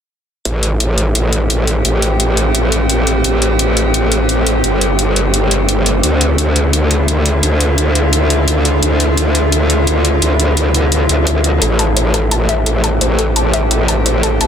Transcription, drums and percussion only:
0.45 closed hi-hat medium
0.63 closed hi-hat medium
0.80 closed hi-hat medium
0.98 closed hi-hat medium
1.15 closed hi-hat medium
1.33 closed hi-hat medium
1.50 closed hi-hat medium
1.67 closed hi-hat medium
1.85 closed hi-hat medium
2.02 closed hi-hat medium
2.20 closed hi-hat medium
2.37 closed hi-hat medium
2.55 closed hi-hat medium
2.72 closed hi-hat medium
2.90 closed hi-hat medium
3.07 closed hi-hat medium
3.24 closed hi-hat medium
3.42 closed hi-hat medium
3.59 closed hi-hat medium
3.77 closed hi-hat medium
3.94 closed hi-hat medium
4.12 closed hi-hat medium
4.29 closed hi-hat medium
4.47 closed hi-hat medium
4.64 closed hi-hat medium
4.81 closed hi-hat medium
4.99 closed hi-hat medium
5.16 closed hi-hat medium
5.34 closed hi-hat medium
5.51 closed hi-hat medium
5.69 closed hi-hat medium
5.86 closed hi-hat medium
6.03 closed hi-hat medium
6.21 closed hi-hat medium
6.38 closed hi-hat medium
6.56 closed hi-hat medium
6.73 closed hi-hat medium
6.91 closed hi-hat medium
7.08 closed hi-hat medium
7.26 closed hi-hat medium
7.43 closed hi-hat medium
7.60 closed hi-hat medium
7.78 closed hi-hat medium
7.95 closed hi-hat medium
8.13 closed hi-hat medium
8.30 closed hi-hat medium
8.48 closed hi-hat medium
8.65 closed hi-hat medium
8.83 closed hi-hat medium
9.00 closed hi-hat medium
9.17 closed hi-hat medium
9.35 closed hi-hat medium
9.52 closed hi-hat loud
9.70 closed hi-hat medium
9.87 closed hi-hat medium
10.05 closed hi-hat medium
10.22 closed hi-hat loud
10.40 closed hi-hat medium
10.57 closed hi-hat medium
10.74 closed hi-hat medium
10.92 closed hi-hat medium
11.09 closed hi-hat medium
11.27 closed hi-hat loud
11.44 closed hi-hat medium
11.62 closed hi-hat medium
11.79 closed hi-hat medium
11.97 closed hi-hat medium
12.14 closed hi-hat medium
12.31 closed hi-hat loud
12.49 closed hi-hat medium
12.66 closed hi-hat loud
12.84 closed hi-hat medium
13.01 closed hi-hat medium
13.19 closed hi-hat medium
13.36 closed hi-hat medium
13.54 closed hi-hat medium
13.71 closed hi-hat medium
13.88 closed hi-hat medium
14.06 closed hi-hat medium
14.23 closed hi-hat medium
14.41 closed hi-hat medium

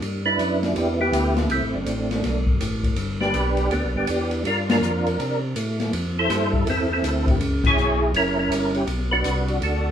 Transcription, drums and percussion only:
0.02 ride medium
0.39 hi-hat pedal soft
0.39 ride medium
0.63 snare soft
0.63 ride soft
0.76 ride medium
1.13 hi-hat pedal medium
1.13 ride medium
1.36 snare medium
1.36 ride soft
1.50 ride medium
1.86 hi-hat pedal medium
1.86 ride medium
2.11 snare soft
2.11 ride medium
2.24 snare soft
2.24 ride medium
2.46 kick medium
2.61 hi-hat pedal medium
2.61 ride medium
2.83 kick medium
2.83 ride soft
2.96 ride medium
3.21 snare soft
3.34 hi-hat pedal soft
3.34 ride medium
3.57 ride soft
3.71 ride medium
4.07 hi-hat pedal medium
4.07 ride medium
4.31 ride soft
4.45 ride medium
4.70 snare medium
4.70 ride medium
4.83 hi-hat pedal medium
5.07 ride soft
5.20 ride medium
5.56 hi-hat pedal medium
5.56 ride medium
5.80 snare soft
5.80 ride soft
5.93 ride medium
6.30 snare soft
6.30 hi-hat pedal medium
6.30 ride medium
6.53 kick medium
6.67 ride medium
7.04 hi-hat pedal medium
7.04 ride medium
7.27 kick medium
7.27 ride soft
7.41 ride medium
7.64 kick medium
7.64 crash medium
7.78 hi-hat pedal soft
8.14 ride medium
8.52 hi-hat pedal medium
8.52 ride medium
8.75 ride soft
8.87 ride medium
9.24 hi-hat pedal medium
9.24 ride medium
9.48 ride soft
9.62 ride medium

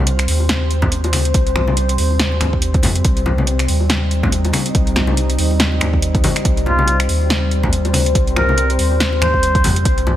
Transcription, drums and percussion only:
0.07 closed hi-hat medium
0.19 finger snap medium
0.19 closed hi-hat medium
0.28 open hi-hat medium
0.40 high bongo soft
0.49 snare loud
0.49 closed hi-hat medium
0.49 high conga medium
0.71 closed hi-hat medium
0.82 kick medium
0.82 low conga loud
0.92 closed hi-hat medium
1.04 closed hi-hat soft
1.04 high bongo medium
1.13 finger snap medium
1.13 open hi-hat loud
1.13 high conga medium
1.25 closed hi-hat medium
1.34 kick loud
1.34 closed hi-hat medium
1.47 closed hi-hat soft
1.56 finger snap medium
1.56 high bongo medium
1.56 low conga medium
1.68 high conga medium
1.77 closed hi-hat medium
1.89 closed hi-hat medium
1.98 open hi-hat medium
2.11 high bongo soft
2.19 snare loud
2.19 closed hi-hat medium
2.19 high conga medium
2.32 high bongo soft
2.40 finger snap medium
2.40 closed hi-hat medium
2.40 low conga medium
2.53 kick medium
2.62 closed hi-hat medium
2.74 kick loud
2.74 closed hi-hat soft
2.83 open hi-hat medium
2.83 high conga loud
2.83 low conga medium
2.95 closed hi-hat medium
3.05 kick loud
3.05 closed hi-hat medium
3.17 closed hi-hat soft
3.26 high bongo medium
3.26 low conga medium
3.38 high conga loud
3.47 closed hi-hat medium
3.59 finger snap medium
3.59 closed hi-hat medium
3.68 open hi-hat medium
3.80 high bongo soft
3.89 snare loud
3.89 closed hi-hat medium
3.89 high conga medium
4.11 closed hi-hat medium
4.23 kick medium
4.23 low conga loud
4.32 closed hi-hat medium
4.45 closed hi-hat soft
4.45 high bongo medium
4.53 finger snap medium
4.53 open hi-hat medium
4.53 high conga loud
4.66 closed hi-hat medium
4.75 kick loud
4.75 closed hi-hat medium
4.87 closed hi-hat soft
4.96 finger snap medium
4.96 snare medium
4.96 high bongo medium
4.96 low conga medium
5.07 high conga loud
5.17 closed hi-hat medium
5.30 closed hi-hat medium
5.39 open hi-hat medium
5.51 high bongo soft
5.60 snare loud
5.60 closed hi-hat medium
5.60 high conga medium
5.72 high bongo soft
5.81 finger snap medium
5.81 closed hi-hat medium
5.81 low conga medium
5.93 kick medium
6.02 closed hi-hat medium
6.15 kick loud
6.15 closed hi-hat soft
6.24 open hi-hat medium
6.24 high conga medium
6.24 low conga medium
6.36 finger snap medium
6.36 closed hi-hat medium
6.45 kick loud
6.45 closed hi-hat medium
6.57 closed hi-hat soft
6.66 high bongo medium
6.66 low conga medium
6.79 high conga loud
6.88 closed hi-hat medium
7.00 finger snap medium
7.00 closed hi-hat medium
7.09 open hi-hat medium
7.21 high bongo soft
7.30 snare loud
7.30 closed hi-hat medium
7.30 high conga medium
7.51 closed hi-hat soft
7.63 kick medium
7.63 low conga loud
7.73 closed hi-hat medium
7.85 closed hi-hat soft
7.85 high bongo medium
7.93 finger snap medium
7.93 open hi-hat medium
7.93 high conga medium
8.06 closed hi-hat medium
8.15 kick loud
8.15 closed hi-hat medium
8.27 closed hi-hat soft
8.36 finger snap medium
8.36 high bongo medium
8.36 low conga medium
8.49 high conga medium
8.58 closed hi-hat medium
8.70 closed hi-hat soft
8.79 open hi-hat medium
8.91 high bongo soft
9.00 snare loud
9.00 closed hi-hat medium
9.00 high conga medium
9.13 high bongo soft
9.22 finger snap medium
9.22 closed hi-hat medium
9.22 low conga medium
9.34 kick medium
9.43 closed hi-hat medium
9.55 kick loud
9.55 closed hi-hat soft
9.64 open hi-hat medium
9.64 high conga medium
9.64 low conga medium
9.76 closed hi-hat medium
9.85 kick loud
9.85 closed hi-hat medium
9.98 closed hi-hat soft
10.07 high bongo medium
10.07 low conga medium

